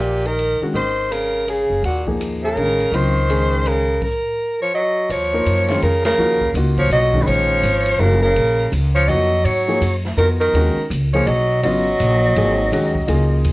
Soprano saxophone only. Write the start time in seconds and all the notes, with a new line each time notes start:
Already playing: G4
0.27 A#4
0.77 C5
1.12 A#4
1.50 G#4
1.85 F#4
2.45 A#4
2.95 C5
3.68 A#4
4.04 A#4
4.62 C#5
4.75 D#5
5.11 C#5
5.83 A#4
6.06 A#4
6.80 C#5
6.93 D#5
7.22 B4
7.27 C#5
8.00 A#4
8.22 A#4
8.95 C#5
9.08 D#5
9.45 C#5
10.17 A#4
10.40 A#4
11.13 C#5
11.27 D#5
11.64 D#5